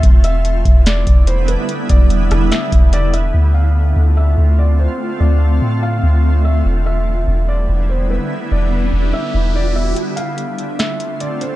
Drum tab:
HH |xxxxxxxx|xxxxxxxx|--------|--------|
SD |----o---|---ro---|--------|--------|
BD |o--o-o--|-o---o--|--------|--------|

HH |--------|--------|xxxxxxxx|
SD |--------|--------|----o---|
BD |--------|--------|--------|